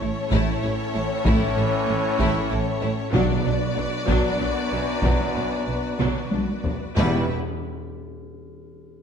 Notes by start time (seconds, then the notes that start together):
Already playing: A2 E3 A3 C#4 E4 A4 C#5
0.00 A1 A3 E4
0.31 A1 A2 A3 E4, taiko
0.62 A1 A2 A3 E4
0.94 A1 A2 A3 E4
1.25 A1 A2 A3 E4, taiko
1.56 A1 A2 A3 E4
1.87 A1 A2 A3 E4
2.19 A1 A2 A3 E4, taiko
2.50 A1 A2 A3 E4
2.81 A1 A2 A3 E4
3.13 B1 F#2 B2 F#3 B3 D4 F#4 B4 D5, taiko
3.43 B1 B2 F#3 D4
3.76 B1 B2 F#3 D4
4.07 B1 B2 F#3 D4, taiko
4.39 B1 B2 F#3 D4
4.72 B1 B2 F#3 D4
5.02 B1 B2 F#3 D4, taiko
5.35 B1 B2 F#3 D4, taiko rim
5.67 B1 B2 F#3 D4
5.99 B1 B2 F#3 D4, taiko mid
6.31 B1 B2 F#3 D4, taiko high
6.64 B1 B2 F#3 D4, taiko low
6.95 E1 E2 B2 G3 B3 E4 G4 B4 E5